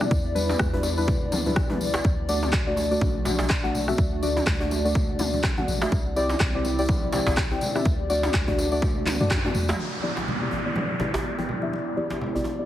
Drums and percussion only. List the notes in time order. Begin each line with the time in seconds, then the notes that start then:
0.01 cross-stick, mid tom, tambourine, high conga
0.11 kick, tambourine, muted conga
0.36 tambourine, high conga
0.49 mid tom, tambourine, muted conga, djembe slap
0.59 kick, cross-stick, low conga
0.73 djembe bass
0.83 tambourine, muted conga, djembe tone
0.98 tambourine
1.07 kick, tambourine, djembe tone, low conga
1.32 mid tom, tambourine, muted conga, high conga
1.46 tambourine, high conga, low conga
1.56 kick, cross-stick, high conga, djembe tone
1.70 mid tom, muted conga, djembe tone, low conga
1.81 tambourine, high conga
1.94 cross-stick, tambourine, djembe slap
2.04 kick, tambourine, muted conga
2.28 tambourine, high conga
2.43 mid tom, tambourine, djembe slap, muted conga
2.53 kick, cross-stick, clap, low conga
2.77 tambourine, muted conga, djembe tone
2.91 tambourine
3.01 kick, high conga, low conga
3.25 tambourine, djembe slap, muted conga, high conga, low conga
3.39 tambourine, djembe slap, djembe bass
3.50 kick, cross-stick, clap
3.63 muted conga, djembe tone, high conga
3.74 tambourine, low conga
3.88 cross-stick, mid tom, tambourine, high conga
3.98 kick, tambourine, muted conga
4.23 tambourine, high conga
4.37 mid tom, tambourine, djembe slap, muted conga
4.47 kick, cross-stick, clap, low conga
4.60 djembe bass
4.71 tambourine, muted conga, djembe tone
4.85 tambourine
4.95 kick, tambourine, djembe tone, low conga
5.19 mid tom, tambourine, muted conga, high conga
5.33 tambourine, high conga, low conga
5.43 kick, cross-stick, clap, djembe tone, high conga
5.57 mid tom, muted conga, djembe tone, low conga
5.68 tambourine, high conga
5.82 cross-stick, tambourine, djembe slap
5.92 kick, tambourine, muted conga
6.16 tambourine, high conga
6.29 mid tom, tambourine, djembe slap, muted conga
6.40 kick, cross-stick, clap, low conga
6.65 tambourine, muted conga, djembe tone
6.79 tambourine
6.89 kick, tambourine, high conga, low conga
7.12 tambourine, djembe slap, muted conga, high conga, low conga
7.27 tambourine, djembe slap, djembe bass
7.37 kick, cross-stick, clap
7.51 muted conga, high conga, djembe tone
7.61 tambourine, low conga
7.76 cross-stick, mid tom, tambourine, high conga
7.85 kick, tambourine, muted conga
8.10 tambourine, high conga
8.23 mid tom, tambourine, djembe slap, muted conga
8.33 kick, cross-stick, clap, tambourine, low conga
8.47 kick, djembe bass
8.58 tambourine, muted conga, djembe tone
8.72 tambourine
8.82 kick, tambourine, djembe tone, low conga
9.06 clap, mid tom, tambourine, muted conga, high conga
9.20 tambourine, high conga, low conga
9.30 kick, cross-stick, clap, high tom, djembe tone, high conga
9.45 mid tom, high tom, muted conga, djembe tone, low conga
9.54 tambourine, high conga
9.68 cross-stick, mid tom, tambourine, djembe slap
9.79 crash, muted conga
10.04 high conga
10.17 djembe slap, muted conga
10.28 low conga
10.51 muted conga, djembe tone
10.76 high conga, low conga
10.99 djembe slap, muted conga, djembe tone, high conga, low conga
11.14 djembe slap, djembe bass
11.39 muted conga, djembe tone, high conga
11.49 low conga
11.62 high conga
11.73 muted conga
11.97 high conga
12.10 djembe slap, muted conga, high conga
12.21 low conga
12.36 djembe bass
12.44 muted conga, djembe tone